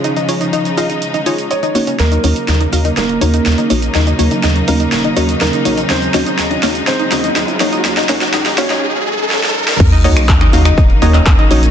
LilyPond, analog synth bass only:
\new Staff \with { instrumentName = "Analog synth bass" } { \clef bass \time 4/4 \key ees \dorian \tempo 4 = 123 r1 | ees,8 ees,8 ees,8 ees,8 ees,,8 ees,8 ees,8 bes,,8 | ees,8 ees,8 ees,8 ees,8 ees,,8 ees,8 ees,8 bes,,8 | ees,8 ees,8 ees,8 ees,8 ees,,8 ees,8 ees,8 bes,,8 |
ees,8 ees,8 ees,8 ees,8 r2 | ees,8 ees,8 ees,8 ees,8 ees,,8 ees,8 ees,8 bes,,8 | }